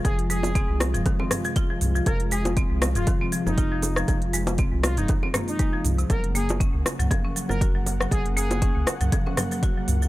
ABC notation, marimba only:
X:1
M:4/4
L:1/16
Q:"Swing 16ths" 1/4=119
K:Fphr
V:1 name="Marimba" clef=bass
F, z A, z C z2 F, E, C F, F, F F, z F, | F, z A, z C z2 F, E, C F, F, F F, z F, | F, z A, z C z2 F, E, C B, z A, F, z C, | G, z B, z D z2 G, F, D G, G, G G, z G, |
G, z B, z D z2 G, F, D G, G, G G, z G, |]